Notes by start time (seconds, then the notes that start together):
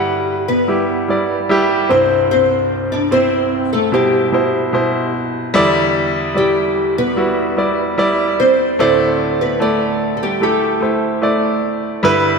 Already playing: G2 D3 G3 E4 G4 B4 F#5
0.48 B3 B4
0.68 G3 E4 G4
1.08 G3 E4 D5
1.49 G3 E4 G4
1.89 C2 G2 C4 E4 C5
2.31 C4 C5
2.92 D4 D5
3.11 C4 E4 C5
3.73 A3 A4
3.92 B2 G3 E4 G4 C5
4.32 B2 E4 C5
4.73 B2 E4 C5
5.54 E2 D3 G3 E4 D5
6.34 G3 E4 G4 D5
6.98 B3 B4
7.16 G3 E4 F#4
7.57 G3 E4 D5
7.98 G3 E4 D5
8.40 C4 C5
8.79 D2 A2 A3 C4 E4 C5 D5
9.41 B3 B4
9.60 A3 E4 A4 D5
10.17 A4
10.23 G3 G4
10.41 A3 E4 G4 A4
10.80 A3 E4 C5
11.22 A3 E4 D5
12.03 G2 D3 G3 E4 B4